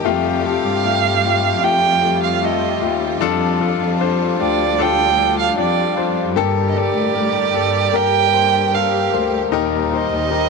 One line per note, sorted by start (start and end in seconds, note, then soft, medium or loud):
0.00 3.17 G4 medium
0.04 0.60 F2 loud
0.04 1.20 C3 medium
0.04 9.48 G3 medium
0.04 0.42 A3 loud
0.04 6.32 F4 medium
0.04 0.43 F4 loud
0.04 0.43 G4 loud
0.43 0.82 A3 medium
0.43 0.83 F4 medium
0.43 0.83 A4 medium
0.43 1.65 F5 loud
0.64 1.63 G2 medium
0.85 1.22 A3 medium
0.85 1.22 F4 medium
0.85 1.22 G4 medium
1.25 1.62 A3 medium
1.25 1.62 F4 medium
1.25 1.62 G4 medium
1.63 2.77 F2 medium
1.63 2.01 A3 medium
1.63 2.01 F4 medium
1.63 2.01 G4 loud
1.63 2.23 G5 loud
2.02 2.40 A3 medium
2.02 2.40 F4 medium
2.02 2.41 G4 medium
2.23 2.46 F5 medium
2.42 2.79 A3 medium
2.42 2.80 F4 medium
2.42 2.80 A4 medium
2.42 3.02 D#5 medium
2.80 3.18 D#2 medium
2.80 3.18 A3 medium
2.80 3.19 F4 medium
2.80 3.19 G4 medium
3.20 3.76 F2 loud
3.20 4.36 F3 medium
3.20 3.58 D4 loud
3.20 6.34 D4 medium
3.20 3.59 F4 loud
3.20 3.59 A4 loud
3.60 3.98 D4 medium
3.60 3.98 F4 medium
3.60 3.98 A4 medium
3.79 4.35 F2 medium
4.00 4.37 D4 medium
4.00 4.38 F4 medium
4.00 4.38 C5 medium
4.39 5.54 D2 loud
4.39 4.77 D4 medium
4.39 4.77 F4 medium
4.39 4.77 G4 medium
4.39 4.83 D5 loud
4.79 5.15 D4 loud
4.79 5.16 F4 medium
4.79 5.17 A4 loud
4.79 5.39 G5 loud
5.17 5.55 D4 medium
5.17 5.55 F4 medium
5.17 5.56 A4 medium
5.39 5.57 F5 medium
5.57 5.94 F2 medium
5.57 5.95 D4 medium
5.57 5.95 F4 medium
5.57 5.96 G4 medium
5.57 6.14 D5 medium
5.96 6.36 F2 medium
5.96 6.34 D4 medium
5.96 6.35 F4 medium
5.96 6.35 C5 medium
6.36 6.92 G2 loud
6.36 7.51 G2 medium
6.36 7.51 D3 medium
6.36 6.74 A#3 loud
6.36 9.49 G4 medium
6.36 6.74 G4 loud
6.36 6.75 A4 loud
6.69 6.79 D#5 medium
6.75 7.13 A#3 medium
6.75 7.13 G4 medium
6.75 7.14 A4 medium
6.75 7.97 D5 medium
6.94 7.50 A2 medium
7.14 7.52 G3 medium
7.14 7.52 G4 medium
7.14 7.53 A#4 medium
7.53 7.92 G2 medium
7.53 7.91 A#3 medium
7.53 7.92 G4 medium
7.53 7.92 A4 medium
7.93 9.09 G2 medium
7.93 8.31 A#3 medium
7.93 8.32 G4 medium
7.93 8.32 A#4 loud
7.93 8.76 G5 loud
8.33 8.71 A#3 medium
8.33 8.71 G4 medium
8.33 8.72 C5 medium
8.73 9.11 A#3 medium
8.73 9.11 G4 medium
8.73 9.11 A4 medium
8.73 9.33 F5 medium
9.12 9.50 D2 medium
9.12 9.50 A#3 medium
9.12 9.51 G4 medium
9.12 9.51 C5 medium
9.52 10.07 D#2 loud
9.52 10.49 A#2 medium
9.52 10.49 G3 medium
9.52 9.90 D#4 loud
9.52 10.49 D#4 medium
9.52 9.90 G4 loud
9.52 9.90 A#4 loud
9.92 10.29 D#4 medium
9.92 10.30 G4 medium
9.92 10.30 C5 medium
9.92 10.49 D#5 loud
10.12 10.49 D#2 medium
10.30 10.49 D#4 medium
10.30 10.49 G4 medium
10.30 10.49 A#4 medium